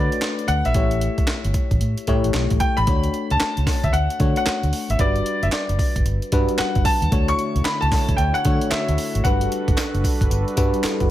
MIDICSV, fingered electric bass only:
0, 0, Header, 1, 3, 480
1, 0, Start_track
1, 0, Key_signature, 2, "major"
1, 0, Tempo, 530973
1, 677, Time_signature, 4, 2, 24, 8
1, 10040, End_track
2, 0, Start_track
2, 0, Title_t, "Fingered electric bass"
2, 0, Program_c, 0, 33
2, 435, Note_on_c, 0, 38, 89
2, 549, Note_off_c, 0, 38, 0
2, 591, Note_on_c, 0, 34, 86
2, 656, Note_off_c, 0, 34, 0
2, 675, Note_on_c, 0, 33, 103
2, 968, Note_off_c, 0, 33, 0
2, 1307, Note_on_c, 0, 31, 95
2, 1374, Note_off_c, 0, 31, 0
2, 1547, Note_on_c, 0, 33, 89
2, 1614, Note_off_c, 0, 33, 0
2, 1638, Note_on_c, 0, 45, 94
2, 1751, Note_off_c, 0, 45, 0
2, 1880, Note_on_c, 0, 45, 89
2, 1992, Note_off_c, 0, 45, 0
2, 2027, Note_on_c, 0, 33, 100
2, 2094, Note_off_c, 0, 33, 0
2, 2114, Note_on_c, 0, 35, 90
2, 2228, Note_off_c, 0, 35, 0
2, 2268, Note_on_c, 0, 33, 84
2, 2335, Note_off_c, 0, 33, 0
2, 2510, Note_on_c, 0, 33, 91
2, 2576, Note_off_c, 0, 33, 0
2, 2596, Note_on_c, 0, 38, 104
2, 2776, Note_off_c, 0, 38, 0
2, 2991, Note_on_c, 0, 37, 82
2, 3057, Note_off_c, 0, 37, 0
2, 3230, Note_on_c, 0, 37, 92
2, 3296, Note_off_c, 0, 37, 0
2, 3467, Note_on_c, 0, 38, 85
2, 3534, Note_off_c, 0, 38, 0
2, 3554, Note_on_c, 0, 38, 95
2, 3668, Note_off_c, 0, 38, 0
2, 3797, Note_on_c, 0, 50, 96
2, 3910, Note_off_c, 0, 50, 0
2, 4186, Note_on_c, 0, 38, 88
2, 4253, Note_off_c, 0, 38, 0
2, 4424, Note_on_c, 0, 32, 92
2, 4492, Note_off_c, 0, 32, 0
2, 4512, Note_on_c, 0, 31, 101
2, 4693, Note_off_c, 0, 31, 0
2, 4903, Note_on_c, 0, 30, 88
2, 4971, Note_off_c, 0, 30, 0
2, 5143, Note_on_c, 0, 30, 96
2, 5212, Note_off_c, 0, 30, 0
2, 5388, Note_on_c, 0, 31, 89
2, 5454, Note_off_c, 0, 31, 0
2, 5469, Note_on_c, 0, 31, 95
2, 5585, Note_off_c, 0, 31, 0
2, 5717, Note_on_c, 0, 43, 92
2, 5830, Note_off_c, 0, 43, 0
2, 6107, Note_on_c, 0, 31, 88
2, 6174, Note_off_c, 0, 31, 0
2, 6344, Note_on_c, 0, 39, 98
2, 6412, Note_off_c, 0, 39, 0
2, 6436, Note_on_c, 0, 38, 110
2, 6616, Note_off_c, 0, 38, 0
2, 6827, Note_on_c, 0, 37, 87
2, 6894, Note_off_c, 0, 37, 0
2, 7069, Note_on_c, 0, 37, 96
2, 7135, Note_off_c, 0, 37, 0
2, 7308, Note_on_c, 0, 38, 96
2, 7375, Note_off_c, 0, 38, 0
2, 7399, Note_on_c, 0, 38, 96
2, 7511, Note_off_c, 0, 38, 0
2, 7641, Note_on_c, 0, 50, 98
2, 7752, Note_off_c, 0, 50, 0
2, 8032, Note_on_c, 0, 38, 85
2, 8097, Note_off_c, 0, 38, 0
2, 8272, Note_on_c, 0, 32, 94
2, 8337, Note_off_c, 0, 32, 0
2, 8359, Note_on_c, 0, 31, 104
2, 8537, Note_off_c, 0, 31, 0
2, 8750, Note_on_c, 0, 30, 87
2, 8816, Note_off_c, 0, 30, 0
2, 8987, Note_on_c, 0, 30, 95
2, 9054, Note_off_c, 0, 30, 0
2, 9229, Note_on_c, 0, 31, 89
2, 9295, Note_off_c, 0, 31, 0
2, 9312, Note_on_c, 0, 31, 95
2, 9427, Note_off_c, 0, 31, 0
2, 9559, Note_on_c, 0, 43, 100
2, 9671, Note_off_c, 0, 43, 0
2, 9950, Note_on_c, 0, 31, 84
2, 10016, Note_off_c, 0, 31, 0
2, 10040, End_track
3, 0, Start_track
3, 0, Title_t, "Muted fingered electric bass strokes"
3, 4035, Note_on_c, 9, 29, 46
3, 4126, Note_off_c, 9, 29, 0
3, 4989, Note_on_c, 9, 29, 45
3, 5079, Note_off_c, 9, 29, 0
3, 5960, Note_on_c, 9, 29, 49
3, 6050, Note_off_c, 9, 29, 0
3, 7876, Note_on_c, 9, 29, 46
3, 7967, Note_off_c, 9, 29, 0
3, 8833, Note_on_c, 9, 29, 49
3, 8923, Note_off_c, 9, 29, 0
3, 9798, Note_on_c, 9, 29, 49
3, 9889, Note_off_c, 9, 29, 0
3, 10040, End_track
0, 0, End_of_file